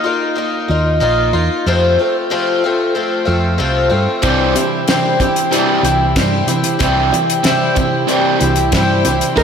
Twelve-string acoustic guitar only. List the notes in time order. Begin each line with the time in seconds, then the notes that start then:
0.04 A#3 D#4 F4
0.35 D#3 A#3 D#4 F4
0.68 A#3 D#4 F4
1.00 D#3 A#3 D#4 F4
1.33 A#3 D#4 F4
1.66 F2 C3 F3 A3 C4 F4
1.99 F3 A3 C4 F4
2.30 F2 C3 F3 A3 C4 F4
2.64 F3 A3 C4 F4
2.95 F3 A3 C4 F4
3.25 F3 A3 C4 F4
3.58 F2 C3 F3 A3 C4 F4
3.90 F3 A3 C4 F4
4.22 C3 G3 C4 E4 G4
4.55 C4 E4 G4
4.88 C3 G3 C4 E4 G4
5.21 C4 E4 G4
5.51 G3 C4 E4 G4
5.84 C4 E4 G4
6.16 C3 G3 C4 E4 G4
6.47 C4 E4 G4
6.79 C3 G3 C4 E4 G4
7.12 C4 E4 G4
7.44 C3 G3 C4 E4 G4
7.75 C4 E4 G4
8.08 G3 C4 E4 G4
8.42 C4 E4 G4
8.73 C3 G3 C4 E4 G4
9.05 C4 E4 G4
9.36 D#3 A#3 D#4 F4